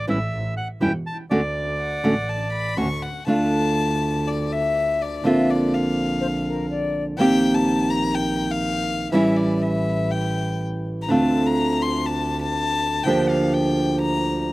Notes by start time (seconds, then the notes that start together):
0.07 A1 E3 G3 C#4 E4 E5
0.32 A1
0.57 F#5
0.81 E1 E3 G3 C#4 E4 G5
1.06 A5
1.30 D2 D3 A3 C#4 F#4 D5
1.79 F#5
2.04 A1 D3 A3 C#4 F#4
2.29 A5
2.53 B5
2.77 D2 D3 A3 C#4 F#4 C#6
3.02 F#5
3.27 D2 D3 A3 D4 F4 A5
4.28 D5
4.52 E5
5.02 D5
5.24 A#1 D3 A#3 C4 F4 E5
5.50 D5
5.74 F5
6.21 C5
6.46 A#4
6.70 D5
7.18 A#1 D#3 A#3 C4 G4 G5
7.55 A5
7.91 A#5
8.14 G5
8.51 F5
9.12 A1 E3 G3 C#4 E4 E5
9.36 D5
9.62 E5
10.11 G5
11.02 A#5
11.08 D2 D3 A3 C4 F4 A5
11.46 A#5
11.82 C6
12.06 A5
12.42 A5
13.03 D2 D3 F3 A#3 D4 G5
13.08 G4
13.29 F5
13.53 G5
14.01 A#5